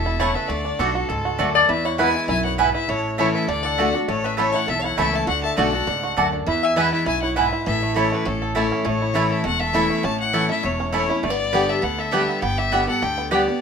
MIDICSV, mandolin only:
0, 0, Header, 1, 2, 480
1, 0, Start_track
1, 0, Tempo, 298211
1, 802, Time_signature, 4, 2, 24, 8
1, 21910, End_track
2, 0, Start_track
2, 0, Title_t, "Mandolin"
2, 0, Program_c, 0, 25
2, 317, Note_on_c, 0, 57, 91
2, 322, Note_on_c, 0, 64, 94
2, 327, Note_on_c, 0, 73, 98
2, 329, Note_on_c, 0, 81, 94
2, 473, Note_off_c, 0, 57, 0
2, 476, Note_off_c, 0, 64, 0
2, 478, Note_off_c, 0, 73, 0
2, 479, Note_off_c, 0, 81, 0
2, 1273, Note_on_c, 0, 57, 77
2, 1279, Note_on_c, 0, 66, 94
2, 1283, Note_on_c, 0, 74, 84
2, 1287, Note_on_c, 0, 81, 96
2, 1432, Note_off_c, 0, 57, 0
2, 1435, Note_off_c, 0, 66, 0
2, 1437, Note_off_c, 0, 74, 0
2, 1439, Note_off_c, 0, 81, 0
2, 2229, Note_on_c, 0, 57, 92
2, 2237, Note_on_c, 0, 66, 88
2, 2238, Note_on_c, 0, 74, 104
2, 2245, Note_on_c, 0, 81, 93
2, 2391, Note_off_c, 0, 57, 0
2, 2395, Note_off_c, 0, 66, 0
2, 2395, Note_off_c, 0, 74, 0
2, 2399, Note_off_c, 0, 81, 0
2, 3192, Note_on_c, 0, 59, 91
2, 3201, Note_on_c, 0, 64, 96
2, 3205, Note_on_c, 0, 71, 91
2, 3210, Note_on_c, 0, 80, 92
2, 3353, Note_off_c, 0, 59, 0
2, 3357, Note_off_c, 0, 64, 0
2, 3360, Note_off_c, 0, 71, 0
2, 3362, Note_off_c, 0, 80, 0
2, 4156, Note_on_c, 0, 59, 87
2, 4157, Note_on_c, 0, 64, 93
2, 4167, Note_on_c, 0, 80, 102
2, 4168, Note_on_c, 0, 71, 102
2, 4316, Note_off_c, 0, 59, 0
2, 4316, Note_off_c, 0, 64, 0
2, 4321, Note_off_c, 0, 80, 0
2, 4322, Note_off_c, 0, 71, 0
2, 5119, Note_on_c, 0, 57, 91
2, 5125, Note_on_c, 0, 64, 94
2, 5131, Note_on_c, 0, 73, 96
2, 5133, Note_on_c, 0, 81, 93
2, 5278, Note_off_c, 0, 57, 0
2, 5281, Note_off_c, 0, 64, 0
2, 5284, Note_off_c, 0, 73, 0
2, 5285, Note_off_c, 0, 81, 0
2, 6084, Note_on_c, 0, 57, 87
2, 6088, Note_on_c, 0, 66, 79
2, 6091, Note_on_c, 0, 74, 84
2, 6099, Note_on_c, 0, 81, 94
2, 6241, Note_off_c, 0, 57, 0
2, 6243, Note_off_c, 0, 66, 0
2, 6245, Note_off_c, 0, 74, 0
2, 6249, Note_off_c, 0, 81, 0
2, 7034, Note_on_c, 0, 57, 96
2, 7045, Note_on_c, 0, 64, 85
2, 7049, Note_on_c, 0, 73, 90
2, 7056, Note_on_c, 0, 81, 92
2, 7197, Note_off_c, 0, 57, 0
2, 7202, Note_off_c, 0, 64, 0
2, 7205, Note_off_c, 0, 73, 0
2, 7208, Note_off_c, 0, 81, 0
2, 8001, Note_on_c, 0, 57, 76
2, 8007, Note_on_c, 0, 64, 94
2, 8013, Note_on_c, 0, 73, 104
2, 8020, Note_on_c, 0, 81, 105
2, 8161, Note_off_c, 0, 57, 0
2, 8164, Note_off_c, 0, 64, 0
2, 8167, Note_off_c, 0, 73, 0
2, 8170, Note_off_c, 0, 81, 0
2, 8962, Note_on_c, 0, 57, 91
2, 8969, Note_on_c, 0, 66, 89
2, 8975, Note_on_c, 0, 74, 102
2, 8978, Note_on_c, 0, 81, 100
2, 9122, Note_off_c, 0, 57, 0
2, 9125, Note_off_c, 0, 66, 0
2, 9128, Note_off_c, 0, 74, 0
2, 9130, Note_off_c, 0, 81, 0
2, 9924, Note_on_c, 0, 57, 90
2, 9935, Note_on_c, 0, 66, 85
2, 9937, Note_on_c, 0, 74, 100
2, 9944, Note_on_c, 0, 81, 111
2, 10083, Note_off_c, 0, 57, 0
2, 10088, Note_off_c, 0, 66, 0
2, 10089, Note_off_c, 0, 74, 0
2, 10093, Note_off_c, 0, 81, 0
2, 10882, Note_on_c, 0, 59, 90
2, 10887, Note_on_c, 0, 64, 90
2, 10894, Note_on_c, 0, 71, 92
2, 10900, Note_on_c, 0, 80, 102
2, 11042, Note_off_c, 0, 59, 0
2, 11044, Note_off_c, 0, 64, 0
2, 11048, Note_off_c, 0, 71, 0
2, 11051, Note_off_c, 0, 80, 0
2, 11846, Note_on_c, 0, 59, 87
2, 11852, Note_on_c, 0, 64, 91
2, 11858, Note_on_c, 0, 71, 97
2, 11864, Note_on_c, 0, 80, 98
2, 12004, Note_off_c, 0, 59, 0
2, 12007, Note_off_c, 0, 64, 0
2, 12010, Note_off_c, 0, 71, 0
2, 12013, Note_off_c, 0, 80, 0
2, 12807, Note_on_c, 0, 57, 91
2, 12814, Note_on_c, 0, 64, 94
2, 12819, Note_on_c, 0, 73, 92
2, 12824, Note_on_c, 0, 81, 94
2, 12964, Note_off_c, 0, 57, 0
2, 12967, Note_off_c, 0, 64, 0
2, 12970, Note_off_c, 0, 73, 0
2, 12972, Note_off_c, 0, 81, 0
2, 13758, Note_on_c, 0, 57, 90
2, 13766, Note_on_c, 0, 64, 94
2, 13771, Note_on_c, 0, 73, 88
2, 13775, Note_on_c, 0, 81, 90
2, 13918, Note_off_c, 0, 57, 0
2, 13922, Note_off_c, 0, 64, 0
2, 13925, Note_off_c, 0, 73, 0
2, 13927, Note_off_c, 0, 81, 0
2, 14727, Note_on_c, 0, 57, 87
2, 14730, Note_on_c, 0, 64, 98
2, 14737, Note_on_c, 0, 73, 97
2, 14739, Note_on_c, 0, 81, 102
2, 14882, Note_off_c, 0, 57, 0
2, 14884, Note_off_c, 0, 64, 0
2, 14887, Note_off_c, 0, 73, 0
2, 14888, Note_off_c, 0, 81, 0
2, 15680, Note_on_c, 0, 57, 91
2, 15687, Note_on_c, 0, 64, 88
2, 15687, Note_on_c, 0, 73, 100
2, 15698, Note_on_c, 0, 81, 114
2, 15838, Note_off_c, 0, 57, 0
2, 15841, Note_off_c, 0, 64, 0
2, 15842, Note_off_c, 0, 73, 0
2, 15847, Note_off_c, 0, 81, 0
2, 16631, Note_on_c, 0, 57, 93
2, 16636, Note_on_c, 0, 64, 84
2, 16645, Note_on_c, 0, 73, 92
2, 16645, Note_on_c, 0, 81, 104
2, 16793, Note_off_c, 0, 57, 0
2, 16795, Note_off_c, 0, 64, 0
2, 16800, Note_off_c, 0, 73, 0
2, 16800, Note_off_c, 0, 81, 0
2, 17586, Note_on_c, 0, 57, 98
2, 17596, Note_on_c, 0, 64, 97
2, 17602, Note_on_c, 0, 73, 100
2, 17610, Note_on_c, 0, 81, 97
2, 17750, Note_off_c, 0, 57, 0
2, 17755, Note_off_c, 0, 64, 0
2, 17758, Note_off_c, 0, 73, 0
2, 17761, Note_off_c, 0, 81, 0
2, 18553, Note_on_c, 0, 59, 88
2, 18562, Note_on_c, 0, 67, 86
2, 18566, Note_on_c, 0, 74, 96
2, 18576, Note_on_c, 0, 79, 93
2, 18713, Note_off_c, 0, 59, 0
2, 18717, Note_off_c, 0, 67, 0
2, 18719, Note_off_c, 0, 74, 0
2, 18724, Note_off_c, 0, 79, 0
2, 19509, Note_on_c, 0, 59, 99
2, 19513, Note_on_c, 0, 67, 98
2, 19520, Note_on_c, 0, 74, 102
2, 19527, Note_on_c, 0, 79, 103
2, 19670, Note_off_c, 0, 59, 0
2, 19672, Note_off_c, 0, 67, 0
2, 19676, Note_off_c, 0, 74, 0
2, 19679, Note_off_c, 0, 79, 0
2, 20471, Note_on_c, 0, 59, 89
2, 20479, Note_on_c, 0, 67, 92
2, 20481, Note_on_c, 0, 74, 92
2, 20483, Note_on_c, 0, 79, 97
2, 20631, Note_off_c, 0, 59, 0
2, 20635, Note_off_c, 0, 67, 0
2, 20636, Note_off_c, 0, 74, 0
2, 20637, Note_off_c, 0, 79, 0
2, 21423, Note_on_c, 0, 59, 94
2, 21427, Note_on_c, 0, 67, 97
2, 21435, Note_on_c, 0, 74, 96
2, 21436, Note_on_c, 0, 79, 100
2, 21586, Note_off_c, 0, 59, 0
2, 21588, Note_off_c, 0, 67, 0
2, 21593, Note_off_c, 0, 74, 0
2, 21593, Note_off_c, 0, 79, 0
2, 21910, End_track
0, 0, End_of_file